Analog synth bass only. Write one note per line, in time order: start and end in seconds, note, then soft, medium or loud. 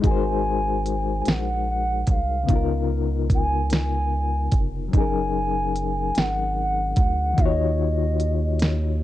0.04 1.22 G#1 loud
1.27 2.04 A#1 medium
2.08 2.45 C2 medium
2.49 4.49 C#2 loud
4.53 4.89 F1 medium
4.94 6.12 F#1 loud
6.17 6.94 G#1 loud
6.97 7.34 D2 loud
7.39 9.03 D#2 loud